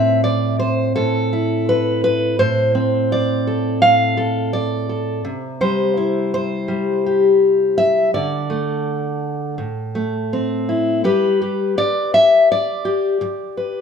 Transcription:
0.00 0.96 A2 medium
0.00 2.74 C4 medium
0.00 0.23 E5 medium
0.24 0.59 D5 medium
0.59 0.95 C5 medium
0.96 2.38 A2 soft
0.96 2.39 A4 medium
1.33 2.35 E4 soft
1.69 2.03 B4 medium
2.04 2.39 B4 medium
2.39 3.81 A2 medium
2.39 3.46 C5 medium
2.75 5.60 C4 medium
3.12 3.81 D5 medium
3.47 4.16 A4 soft
3.82 5.24 A2 soft
3.82 4.53 F5 medium
4.17 4.88 A4 soft
4.53 5.25 D5 medium
4.89 5.21 A4 soft
5.25 8.09 C3 medium
5.61 6.67 G3 medium
5.61 6.33 C5 medium
5.97 8.09 E4 soft
6.34 7.77 C5 medium
6.68 8.08 G3 medium
7.06 8.10 G4 soft
7.78 8.13 E5 medium
8.14 9.58 D3 medium
8.14 9.58 D5 medium
8.50 9.54 A3 medium
9.58 11.04 A2 medium
9.95 11.00 A3 medium
10.33 11.04 C4 soft
10.69 11.05 E4 soft
11.04 11.78 G3 medium
11.04 11.41 G4 soft
11.04 12.50 B4 medium
11.42 12.84 G4 soft
11.78 12.14 D5 medium
11.78 muted steel-string acoustic guitar stroke medium
12.14 12.50 E5 loud
12.52 13.81 D5 medium
12.85 13.81 G4 medium
13.21 muted steel-string acoustic guitar stroke medium
13.57 13.81 B4 soft

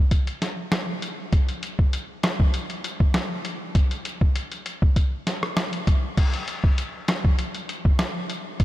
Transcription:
0.11 kick medium
0.11 closed hi-hat medium
0.27 closed hi-hat medium
0.42 snare medium
0.42 closed hi-hat medium
0.72 cross-stick medium
0.72 snare loud
0.72 closed hi-hat medium
1.02 closed hi-hat medium
1.33 kick loud
1.33 closed hi-hat medium
1.49 closed hi-hat medium
1.63 closed hi-hat medium
1.79 kick medium
1.93 closed hi-hat medium
2.23 cross-stick medium
2.23 snare loud
2.23 closed hi-hat medium
2.40 kick loud
2.54 closed hi-hat medium
2.70 closed hi-hat medium
2.84 closed hi-hat medium
3.00 kick loud
3.14 cross-stick medium
3.14 snare loud
3.14 closed hi-hat medium
3.45 closed hi-hat medium
3.75 kick loud
3.75 closed hi-hat medium
3.91 closed hi-hat soft
4.05 closed hi-hat medium
4.21 kick medium
4.36 closed hi-hat medium
4.52 closed hi-hat medium
4.66 closed hi-hat medium
4.82 kick loud
4.96 kick medium
4.96 closed hi-hat medium
5.27 snare medium
5.27 closed hi-hat medium
5.43 cross-stick loud
5.57 cross-stick medium
5.57 snare loud
5.57 closed hi-hat medium
5.73 closed hi-hat medium
5.87 kick loud
5.87 closed hi-hat medium
6.17 kick loud
6.17 closed hi-hat medium
6.17 crash loud
6.34 closed hi-hat medium
6.48 closed hi-hat medium
6.64 kick loud
6.78 closed hi-hat medium
7.08 cross-stick medium
7.08 snare loud
7.08 closed hi-hat medium
7.25 kick loud
7.39 closed hi-hat medium
7.55 closed hi-hat medium
7.69 closed hi-hat medium
7.85 kick loud
7.99 cross-stick medium
7.99 snare loud
7.99 closed hi-hat medium
8.30 closed hi-hat medium
8.60 kick loud
8.60 closed hi-hat medium

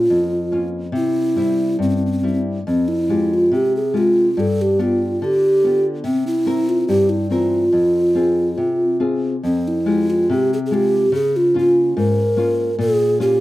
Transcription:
0.00 0.35 A#3 soft
0.00 0.35 C#4 soft
0.00 0.36 F4 soft
0.00 0.68 F4 medium
0.10 0.92 F2 soft
0.52 0.86 A#3 soft
0.52 0.86 C#4 soft
0.52 0.86 F4 soft
0.92 1.76 C3 medium
0.96 1.77 E4 medium
1.36 2.05 G3 soft
1.36 2.05 C4 soft
1.36 2.06 E4 soft
1.79 2.63 G2 soft
1.79 1.88 C4 medium
1.89 1.95 C4 soft
1.97 2.03 C4 medium
2.06 2.11 C4 medium
2.12 2.18 C4 medium
2.19 2.25 C4 soft
2.23 2.58 G3 soft
2.23 2.58 C4 soft
2.23 2.33 C4 medium
2.23 2.58 E4 soft
2.33 2.40 C4 soft
2.67 3.51 F2 medium
2.67 2.90 C4 medium
2.88 3.35 E4 medium
3.09 3.78 G#3 soft
3.09 3.79 F4 soft
3.09 3.78 G4 soft
3.34 3.53 F4 medium
3.52 4.34 C3 medium
3.52 3.73 G4 medium
3.76 3.99 G#4 medium
3.94 4.28 G#3 soft
3.94 4.28 F4 soft
3.94 4.41 F4 medium
3.94 4.29 G4 soft
4.37 5.18 G2 medium
4.37 4.63 A4 medium
4.62 4.82 G4 medium
4.79 5.45 B3 soft
4.79 5.46 F4 soft
4.79 5.26 F4 medium
4.79 5.46 G4 soft
5.22 6.02 D3 medium
5.22 5.85 G4 medium
5.64 5.97 B3 soft
5.64 5.97 F4 soft
5.64 5.97 G4 soft
6.04 6.85 C3 medium
6.04 6.24 C4 medium
6.27 6.71 E4 medium
6.46 7.13 C4 soft
6.46 7.13 E4 soft
6.46 7.13 A#4 medium
6.69 6.88 F4 medium
6.88 7.69 G2 medium
6.88 7.11 G4 medium
7.10 7.30 E4 medium
7.30 7.64 E3 soft
7.30 7.63 C4 soft
7.30 8.96 F4 medium
7.30 7.64 A#4 soft
7.72 8.54 F2 medium
8.15 8.83 C4 soft
8.15 8.83 F4 soft
8.15 8.84 G#4 soft
8.57 9.41 C3 medium
9.00 9.35 C4 soft
9.00 9.35 F4 soft
9.00 9.35 G#4 soft
9.43 10.27 F2 medium
9.43 9.69 C4 medium
9.68 10.12 E4 medium
9.86 10.54 G#3 soft
9.86 10.54 F4 soft
9.86 10.54 G4 soft
10.10 10.30 F4 medium
10.29 11.11 C3 medium
10.29 10.50 G4 medium
10.53 10.59 G#4 medium
10.66 10.76 G#4 medium
10.71 11.05 G#3 soft
10.71 11.05 F4 soft
10.71 11.06 G4 soft
10.71 11.14 G4 medium
11.12 11.93 C#3 medium
11.12 11.38 G#4 medium
11.36 11.56 F4 medium
11.54 12.20 A#3 soft
11.54 12.21 C#4 soft
11.54 12.21 F4 medium
11.59 11.95 F4 medium
11.97 12.77 G#2 medium
11.97 12.76 A#4 medium
12.37 12.70 A#3 soft
12.37 12.70 C#4 soft
12.37 12.71 F4 soft
12.79 13.40 A#2 medium
12.79 13.18 G#4 medium
13.20 13.40 A#3 soft
13.20 13.40 C#4 soft
13.20 13.40 F4 medium
13.20 13.40 G4 medium

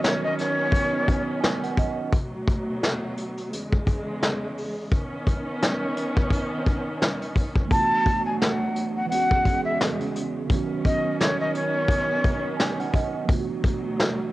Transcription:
0.00 2.07 D#3 medium
0.00 2.10 D#3 medium
0.00 2.08 F#3 medium
0.00 2.09 B3 medium
0.00 2.10 B3 medium
0.00 2.10 C#4 medium
0.00 2.11 F#4 medium
0.00 0.21 C#5 medium
0.00 closed hi-hat medium
0.04 snare loud
0.04 snare medium
0.24 0.37 D#5 medium
0.38 1.39 C#5 loud
0.38 snare soft
0.38 closed hi-hat medium
0.72 kick loud
0.72 closed hi-hat loud
1.08 kick medium
1.08 closed hi-hat medium
1.41 1.60 G#5 medium
1.41 snare loud
1.41 closed hi-hat medium
1.63 1.77 F#5 medium
1.63 closed hi-hat medium
1.77 2.11 D#5 medium
1.77 kick medium
1.77 closed hi-hat medium
2.11 3.50 D2 medium
2.11 3.50 B2 medium
2.11 3.50 F#3 medium
2.11 kick loud
2.11 closed hi-hat medium
2.48 kick loud
2.48 closed hi-hat medium
2.83 snare loud
2.83 snare medium
2.83 closed hi-hat medium
3.17 closed hi-hat medium
3.37 closed hi-hat medium
3.52 4.90 E2 medium
3.52 4.90 C#3 medium
3.52 4.90 G#3 loud
3.52 closed hi-hat medium
3.73 kick loud
3.87 kick medium
3.87 closed hi-hat medium
4.23 snare loud
4.23 snare medium
4.23 closed hi-hat medium
4.57 open hi-hat medium
4.92 7.68 D#3 medium
4.92 7.68 B3 medium
4.92 7.68 C#4 loud
4.92 kick loud
4.92 closed hi-hat loud
5.27 kick medium
5.27 closed hi-hat medium
5.62 snare loud
5.62 snare medium
5.62 closed hi-hat medium
5.96 closed hi-hat medium
6.16 kick loud
6.16 closed hi-hat medium
6.30 kick loud
6.30 closed hi-hat medium
6.66 kick loud
6.66 closed hi-hat medium
7.02 snare loud
7.02 closed hi-hat medium
7.21 closed hi-hat medium
7.36 kick medium
7.36 closed hi-hat medium
7.56 kick loud
7.66 9.05 E3 medium
7.66 9.06 A3 medium
7.70 9.10 D2 medium
7.70 9.10 B2 medium
7.70 9.10 F#3 medium
7.70 9.07 B3 medium
7.70 9.08 D4 medium
7.70 8.22 A5 loud
7.70 kick loud
7.70 closed hi-hat medium
7.75 7.80 F4 medium
7.81 9.13 F#4 medium
8.06 kick medium
8.06 closed hi-hat medium
8.26 8.39 G#5 medium
8.40 8.92 F#5 medium
8.40 snare loud
8.40 snare medium
8.40 closed hi-hat medium
8.76 closed hi-hat medium
8.96 9.09 F#5 medium
9.06 10.45 E3 medium
9.06 10.46 G#3 medium
9.06 9.61 F#5 loud
9.10 10.48 E2 medium
9.10 10.48 C#3 medium
9.10 10.48 G#3 medium
9.10 10.47 B3 medium
9.10 10.48 C#4 medium
9.10 closed hi-hat loud
9.15 10.49 F#4 medium
9.31 kick loud
9.45 kick loud
9.45 closed hi-hat medium
9.65 9.79 E5 medium
9.81 snare loud
9.81 closed hi-hat medium
10.00 closed hi-hat medium
10.16 closed hi-hat medium
10.46 13.23 D#3 medium
10.46 13.24 F#3 medium
10.46 13.26 B3 medium
10.46 kick loud
10.46 closed hi-hat loud
10.50 13.26 D#3 medium
10.50 13.25 B3 medium
10.50 13.26 C#4 medium
10.50 13.27 C#4 medium
10.55 13.28 F#4 medium
10.85 11.16 D#5 medium
10.85 kick medium
10.85 closed hi-hat medium
11.19 11.37 C#5 medium
11.19 snare loud
11.19 snare medium
11.19 closed hi-hat medium
11.40 11.53 D#5 medium
11.55 12.55 C#5 loud
11.55 closed hi-hat medium
11.88 kick loud
11.88 closed hi-hat medium
12.24 kick loud
12.24 closed hi-hat medium
12.57 12.76 G#5 medium
12.57 snare loud
12.57 snare medium
12.57 closed hi-hat medium
12.80 12.94 F#5 medium
12.80 closed hi-hat medium
12.94 13.27 D#5 medium
12.94 kick medium
12.94 closed hi-hat medium
13.24 14.32 D2 medium
13.24 14.32 B2 medium
13.24 14.32 E3 medium
13.24 14.32 F#3 medium
13.24 14.32 A3 medium
13.29 14.32 B3 medium
13.29 14.32 D4 medium
13.29 kick loud
13.29 closed hi-hat loud
13.33 13.38 F4 medium
13.40 14.32 F#4 medium
13.64 kick loud
13.64 closed hi-hat medium
13.99 snare loud
13.99 snare medium
13.99 closed hi-hat medium

